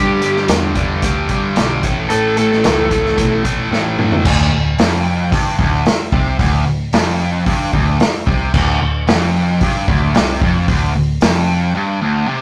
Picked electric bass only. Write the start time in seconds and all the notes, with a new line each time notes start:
Already playing: G2
0.49 E2
1.03 D2
1.30 muted picked electric bass stroke
1.57 B1
2.11 A1
2.65 C#2
3.18 B1
3.72 A1
4.25 D1
4.53 D1
4.79 F1
5.32 G1
5.59 D1
5.87 muted picked electric bass stroke
6.12 C2
6.39 D1
6.66 D1
6.93 F1
7.46 G1
7.73 D1
8.00 muted picked electric bass stroke
8.27 C2
8.54 D1
8.81 D1
9.08 F1
9.61 G1
9.88 D1
10.15 C2
10.41 F1
10.68 D1
10.94 D1
11.21 F1